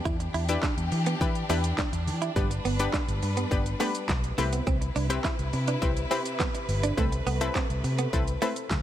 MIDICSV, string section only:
0, 0, Header, 1, 2, 480
1, 0, Start_track
1, 0, Tempo, 576923
1, 45, Time_signature, 4, 2, 24, 8
1, 7340, End_track
2, 0, Start_track
2, 0, Title_t, "String section"
2, 0, Program_c, 0, 48
2, 0, Note_on_c, 0, 52, 80
2, 0, Note_on_c, 0, 62, 77
2, 0, Note_on_c, 0, 67, 94
2, 1944, Note_off_c, 0, 52, 0
2, 1945, Note_off_c, 0, 67, 0
2, 1966, Note_on_c, 0, 55, 82
2, 1967, Note_on_c, 0, 71, 85
2, 3613, Note_off_c, 0, 62, 0
2, 3629, Note_off_c, 0, 55, 0
2, 3629, Note_off_c, 0, 71, 0
2, 3644, Note_on_c, 0, 48, 84
2, 3644, Note_on_c, 0, 64, 92
2, 3646, Note_on_c, 0, 71, 77
2, 5783, Note_off_c, 0, 64, 0
2, 5804, Note_on_c, 0, 57, 80
2, 7340, Note_off_c, 0, 48, 0
2, 7340, Note_off_c, 0, 57, 0
2, 7340, Note_off_c, 0, 71, 0
2, 7340, End_track
0, 0, End_of_file